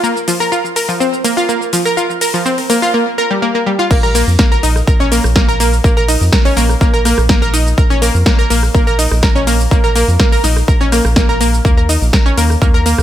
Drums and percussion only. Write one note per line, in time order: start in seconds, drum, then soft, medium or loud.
0.04 shaker soft
0.17 shaker soft
0.28 open hi-hat loud
0.28 shaker medium
0.41 shaker soft
0.53 shaker soft
0.65 shaker soft
0.76 open hi-hat loud
0.76 shaker medium
0.89 shaker soft
1.01 shaker soft
1.14 shaker soft
1.24 open hi-hat loud
1.24 shaker medium
1.38 shaker soft
1.49 shaker soft
1.62 shaker soft
1.73 open hi-hat loud
1.73 shaker medium
1.86 shaker soft
1.98 shaker soft
2.10 shaker soft
2.21 open hi-hat loud
2.21 shaker medium
2.34 shaker soft
2.46 shaker soft
2.58 open hi-hat medium
2.58 shaker soft
2.70 open hi-hat loud
2.70 shaker medium
2.83 shaker soft
3.91 kick loud
3.91 crash loud
3.91 shaker soft
4.04 shaker soft
4.15 open hi-hat loud
4.15 shaker medium
4.28 shaker soft
4.39 kick loud
4.39 snare loud
4.39 shaker soft
4.52 shaker soft
4.63 open hi-hat loud
4.63 shaker medium
4.76 cross-stick medium
4.76 shaker soft
4.87 kick loud
4.87 shaker soft
5.01 shaker soft
5.12 open hi-hat loud
5.12 shaker medium
5.24 cross-stick medium
5.24 shaker soft
5.36 kick loud
5.36 snare loud
5.36 shaker soft
5.49 shaker soft
5.60 open hi-hat loud
5.60 shaker medium
5.73 shaker soft
5.84 kick loud
5.84 shaker soft
5.98 shaker soft
6.08 open hi-hat loud
6.08 shaker medium
6.22 shaker soft
6.32 kick loud
6.32 snare loud
6.32 shaker soft
6.45 open hi-hat medium
6.45 shaker soft
6.57 snare soft
6.57 open hi-hat loud
6.57 shaker medium
6.69 cross-stick medium
6.69 shaker soft
6.81 kick loud
6.81 shaker soft
6.94 shaker soft
7.05 cross-stick medium
7.05 open hi-hat loud
7.05 shaker medium
7.18 cross-stick medium
7.18 shaker soft
7.29 kick loud
7.29 snare loud
7.29 shaker soft
7.43 shaker soft
7.54 open hi-hat loud
7.54 shaker medium
7.67 shaker soft
7.78 kick loud
7.78 shaker soft
7.91 shaker soft
8.02 open hi-hat loud
8.02 shaker medium
8.15 shaker soft
8.26 kick loud
8.26 snare loud
8.26 shaker soft
8.39 shaker soft
8.50 open hi-hat loud
8.50 shaker medium
8.63 cross-stick medium
8.63 shaker soft
8.75 kick loud
8.75 shaker soft
8.88 shaker soft
8.99 open hi-hat loud
8.99 shaker medium
9.11 cross-stick medium
9.11 shaker soft
9.23 kick loud
9.23 snare loud
9.23 shaker soft
9.36 shaker soft
9.47 open hi-hat loud
9.47 shaker medium
9.60 shaker soft
9.71 kick loud
9.71 shaker soft
9.85 shaker soft
9.96 open hi-hat loud
9.96 shaker medium
10.09 shaker soft
10.20 kick loud
10.20 snare loud
10.20 shaker soft
10.32 open hi-hat medium
10.32 shaker soft
10.44 snare soft
10.44 open hi-hat loud
10.44 shaker medium
10.57 cross-stick medium
10.57 shaker soft
10.68 kick loud
10.68 shaker soft
10.81 shaker soft
10.92 cross-stick medium
10.92 open hi-hat loud
10.92 shaker medium
11.05 cross-stick medium
11.05 shaker soft
11.16 kick loud
11.16 snare loud
11.16 shaker soft
11.30 shaker soft
11.41 open hi-hat loud
11.41 shaker medium
11.54 shaker soft
11.65 kick loud
11.65 shaker soft
11.78 shaker soft
11.89 open hi-hat loud
11.89 shaker medium
12.02 shaker soft
12.13 kick loud
12.13 snare loud
12.13 shaker soft
12.27 shaker soft
12.37 open hi-hat loud
12.37 shaker medium
12.50 cross-stick medium
12.50 shaker soft
12.62 kick loud
12.62 shaker soft
12.75 shaker soft
12.86 open hi-hat loud
12.86 shaker medium
12.98 cross-stick medium
12.98 shaker soft